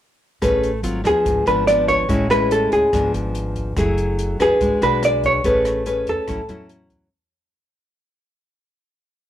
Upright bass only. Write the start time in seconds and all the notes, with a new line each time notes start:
0.42 A1
0.83 G#1
1.05 D#2
1.26 G#1
1.46 G#1
2.09 A1
2.72 C#2
2.93 G#1
3.14 G#1
3.77 F#1
4.40 F#1
4.61 G#1
4.81 B1
5.44 A1
6.07 E2
6.28 A1
6.48 E2